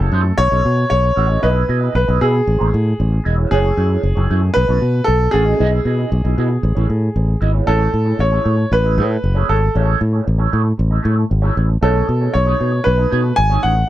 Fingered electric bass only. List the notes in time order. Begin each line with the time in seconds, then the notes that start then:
0.12 F#2
0.38 B1
0.52 B1
0.65 B2
0.91 B1
1.17 A1
1.44 B1
1.69 B2
1.95 B1
2.08 B1
2.22 B2
2.47 A1
2.61 A1
2.74 A2
3.00 A1
3.26 E1
3.52 F#1
3.77 F#2
4.03 F#1
4.17 F#1
4.30 F#2
4.57 B1
4.69 B1
4.82 B2
5.08 B1
5.34 A1
5.60 B1
5.85 B2
6.12 B1
6.25 B1
6.38 B2
6.63 A1
6.77 A1
6.90 A2
7.16 A1
7.42 G#1
7.68 A1
7.94 A2
8.19 A1
8.46 A2
8.72 A1
8.98 A2
9.24 F#1
9.49 G#1
9.75 A1
10.01 A2
10.27 A1
10.53 A2
10.79 A1
11.05 A2
11.31 G#1
11.57 A1
11.82 B1
12.09 B2
12.35 B1
12.61 B2
12.87 B1
13.12 B2
13.38 G#1
13.64 A1